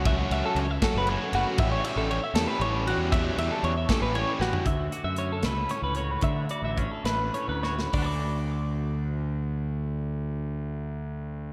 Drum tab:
RD |x-x-x-x-x-x-|x-x-x-x-x-x-|x-x-x-x-x---|------------|
HH |------------|------------|------------|x-x-x-x-x-x-|
SD |------o-----|------o-----|------o---o-|------o-----|
FT |------------|------------|-----------o|------------|
BD |o-----o-----|o-----------|o-----o-----|o-----------|

RD |------------|------------|------------|
HH |x-x-x-x-x---|o-----------|------------|
SD |------o---oo|------------|------------|
FT |------------|------------|------------|
BD |o---o-------|o-----------|------------|